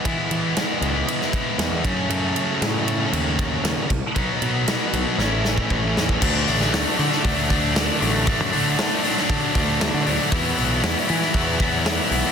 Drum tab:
CC |----------------|----------------|----------------|x---------------|
RD |x-x-x-x-x-x-x-x-|x-x-x-x-x-x-x-x-|x-x-x-x---------|----------------|
HH |----------------|----------------|----------------|--o-o-o-o-o-o-o-|
SD |----o----o--o---|----o-------o---|----o---o-o---o-|---oo--o----o---|
BD |o---------o---o-|----------o---o-|o----------oo--o|o-------o-o-----|

CC |----------------|----------------|
RD |----------------|----------------|
HH |o-o-o-o-o-o-o-o-|o-o-o-o-o---o-o-|
SD |----o--o----o---|----o--o----o---|
BD |o-------o-o-----|o-------o-o-----|